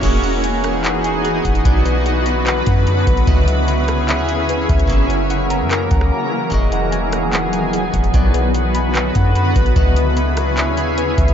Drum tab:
CC |x---------------|----------------|----------------|----------------|
HH |x-x-x-x-x-x-x-xx|x-x-x-x-x-x-x-xx|x-x-x-x-x-x-x-xx|x-x-x-x-x-x-----|
CP |--------x-------|--------x-------|--------x-------|--------x-------|
SD |------r---------|----------------|------r---------|-----------r----|
BD |o-------------o-|o---------o---o-|o-------------o-|o---------o-----|

CC |----------------|----------------|----------------|
HH |x-x-x-x-x-x-x-xx|x-x-x-x-x-x-x-xx|x-x-x-x-x-x-x-xx|
CP |--------x-------|--------x-------|--------x-------|
SD |------r---------|----------------|------r---------|
BD |o-------------o-|o---------o---o-|o-------------o-|